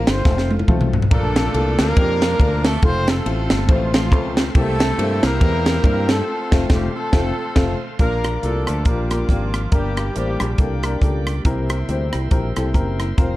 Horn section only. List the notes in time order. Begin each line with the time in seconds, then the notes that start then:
0.08 C4 F4 A4 C5
1.11 A3 D4 F4 A4
1.79 A#3 D4 F4 A#4
2.65 A3 A4
2.83 C4 F4 A4 C5
3.08 A3 C4 F4 A4
3.52 A3 A4
3.70 F3 A3 C4 F4
3.94 F3 A3 C4 F4
4.55 A3 E4 A4
5.24 A#3 E4 G4 A#4
6.10 A3 C4 F4 A4
6.71 G3 G4
6.95 A3 C4 F4 A4
7.99 A#3 D4 F4 A#4
8.43 A3 D4 F4 A4
8.86 G3 A#3 D4 G4
9.30 F3 A#3 D4 F4
9.73 G3 A#3 D4 G4
10.16 G3 A#3 D4 G4
10.59 A#3 D4 G4 A#4